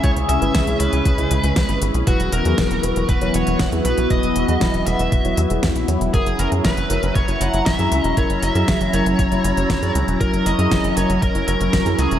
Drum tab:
HH |xxxxxxxxxxxxxxxx|xxxxxxxxxxxxxxxx|xxxxxxxxxxxxxxxx|xxxxxxxxxxxxxxxx|
SD |----o-------o---|----o-------o---|----o-------o---|----o-------o---|
BD |o---o---o---o---|o---o---o---o---|o---o---o---o---|o---o---o---o---|

HH |xxxxxxxxxxxxxxxx|xxxxxxxxxxxxxxxx|
SD |----o-------o---|----o-------o---|
BD |o---o---o---o---|o---o---o---o---|